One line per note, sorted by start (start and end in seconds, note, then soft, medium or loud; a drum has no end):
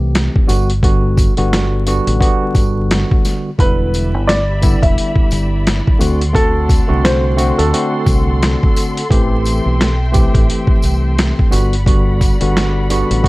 0.00 0.28 C2 medium
0.00 0.48 E3 medium
0.00 0.48 A3 medium
0.00 0.48 C4 medium
0.00 0.48 G4 loud
0.15 snare loud
0.15 snare medium
0.15 closed hi-hat medium
0.36 kick loud
0.47 1.27 G1 loud
0.47 0.70 D3 medium
0.47 0.70 G3 medium
0.47 0.70 B3 medium
0.47 0.71 F#4 loud
0.47 closed hi-hat medium
0.47 tambourine medium
0.70 closed hi-hat medium
0.83 1.32 D3 loud
0.83 1.33 G3 medium
0.83 1.33 B3 loud
0.83 1.33 F#4 loud
0.83 kick loud
0.83 closed hi-hat medium
1.17 kick medium
1.17 closed hi-hat medium
1.17 tambourine medium
1.37 1.99 G1 medium
1.37 1.83 D3 loud
1.37 1.83 G3 medium
1.37 1.83 B3 medium
1.37 1.84 F#4 loud
1.37 closed hi-hat medium
1.53 snare loud
1.53 closed hi-hat medium
1.86 2.18 D3 loud
1.86 2.19 G3 medium
1.86 2.19 B3 medium
1.86 2.19 F#4 loud
1.86 closed hi-hat medium
1.86 tambourine medium
2.07 2.20 A1 loud
2.07 closed hi-hat medium
2.19 3.49 D3 medium
2.19 3.49 G3 medium
2.19 3.49 B3 medium
2.19 3.49 F#4 loud
2.19 kick loud
2.19 closed hi-hat loud
2.55 3.03 G1 loud
2.55 kick loud
2.55 closed hi-hat medium
2.55 tambourine soft
2.91 snare loud
2.91 snare medium
2.91 closed hi-hat medium
3.11 kick loud
3.25 snare soft
3.25 closed hi-hat medium
3.25 tambourine medium
3.58 4.14 E1 loud
3.58 4.39 D3 loud
3.58 4.40 G3 medium
3.58 4.40 B3 medium
3.58 4.40 E4 loud
3.58 5.98 G4 medium
3.58 4.24 B4 loud
3.58 9.07 D5 medium
3.58 5.98 E5 medium
3.58 5.98 B5 medium
3.58 kick loud
3.58 closed hi-hat medium
3.94 closed hi-hat medium
3.94 tambourine medium
4.14 4.75 G1 medium
4.27 4.79 D5 medium
4.27 snare loud
4.27 closed hi-hat medium
4.62 5.98 D3 loud
4.62 6.00 G3 medium
4.62 6.00 B3 medium
4.62 6.01 E4 loud
4.62 kick loud
4.62 closed hi-hat medium
4.62 tambourine medium
4.82 4.96 E1 medium
4.82 5.13 E5 medium
4.82 kick loud
4.82 closed hi-hat medium
4.98 closed hi-hat loud
5.16 kick loud
5.31 5.80 G1 medium
5.31 closed hi-hat medium
5.31 tambourine medium
5.67 snare loud
5.67 snare medium
5.67 closed hi-hat medium
5.87 kick loud
5.99 6.79 D2 loud
5.99 6.22 D3 medium
5.99 6.22 A3 medium
5.99 6.22 C4 medium
5.99 6.22 F#4 loud
5.99 11.48 A4 medium
5.99 9.08 F#5 medium
5.99 11.48 C6 loud
5.99 closed hi-hat medium
5.99 tambourine medium
6.21 closed hi-hat medium
6.33 6.83 D3 medium
6.33 6.83 A3 medium
6.33 6.84 C4 medium
6.33 6.84 F#4 loud
6.33 7.00 A4 loud
6.33 kick loud
6.33 closed hi-hat medium
6.69 kick loud
6.69 closed hi-hat medium
6.69 tambourine medium
6.87 7.50 C2 loud
6.87 7.34 D3 loud
6.87 7.34 A3 medium
6.87 7.34 C4 medium
6.87 7.35 F#4 loud
7.04 7.55 C5 medium
7.04 snare loud
7.04 snare medium
7.04 closed hi-hat medium
7.36 7.69 D3 loud
7.36 7.70 A3 medium
7.36 7.70 C4 medium
7.36 7.70 F#4 loud
7.36 closed hi-hat medium
7.36 tambourine medium
7.58 7.72 D2 medium
7.58 9.07 A4 medium
7.58 closed hi-hat medium
7.72 9.01 D3 medium
7.72 9.01 A3 medium
7.72 9.02 C4 medium
7.72 9.02 F#4 loud
7.72 closed hi-hat loud
8.06 8.55 C2 medium
8.06 kick loud
8.06 closed hi-hat medium
8.06 tambourine medium
8.43 snare loud
8.43 snare medium
8.43 closed hi-hat medium
8.63 kick medium
8.76 closed hi-hat medium
8.76 tambourine medium
8.97 closed hi-hat medium
9.10 9.59 A1 loud
9.10 9.91 E3 loud
9.10 9.91 A3 medium
9.10 9.92 C4 medium
9.10 9.92 G4 loud
9.10 11.50 E5 medium
9.10 11.50 G5 medium
9.10 kick loud
9.10 closed hi-hat medium
9.45 closed hi-hat medium
9.45 tambourine medium
9.66 10.26 B1 loud
9.81 snare loud
9.81 closed hi-hat medium
10.12 11.51 E3 medium
10.12 11.51 A3 medium
10.12 11.52 C4 medium
10.12 11.52 G4 loud
10.12 kick loud
10.12 closed hi-hat medium
10.12 tambourine medium
10.35 10.48 A1 medium
10.35 kick loud
10.35 closed hi-hat medium
10.50 closed hi-hat loud
10.67 kick loud
10.82 11.31 C2 medium
10.82 closed hi-hat medium
10.82 tambourine medium
11.18 snare loud
11.18 snare medium
11.18 closed hi-hat medium
11.39 kick medium
11.50 12.31 G1 loud
11.50 11.73 D3 medium
11.50 11.73 G3 medium
11.50 13.28 G3 medium
11.50 11.74 B3 medium
11.50 11.74 F#4 loud
11.50 13.28 D5 medium
11.50 13.28 F#5 medium
11.50 13.28 B5 medium
11.50 closed hi-hat medium
11.50 tambourine medium
11.73 closed hi-hat medium
11.86 12.36 D3 loud
11.86 12.36 G3 medium
11.86 12.36 B3 medium
11.86 12.37 F#4 loud
11.86 kick loud
11.86 closed hi-hat medium
12.21 kick loud
12.21 closed hi-hat medium
12.21 tambourine medium
12.40 13.02 G1 medium
12.40 12.86 D3 medium
12.40 12.87 G3 medium
12.40 12.87 B3 medium
12.40 12.87 F#4 loud
12.40 closed hi-hat medium
12.57 snare loud
12.57 closed hi-hat medium
12.90 13.21 D3 loud
12.90 13.22 G3 medium
12.90 13.22 B3 medium
12.90 13.23 F#4 loud
12.90 closed hi-hat medium
12.90 tambourine medium
13.11 13.23 A1 loud
13.11 closed hi-hat medium
13.23 13.28 D3 medium
13.23 13.28 G3 medium
13.23 13.28 B3 medium
13.23 13.28 F#4 loud
13.23 kick loud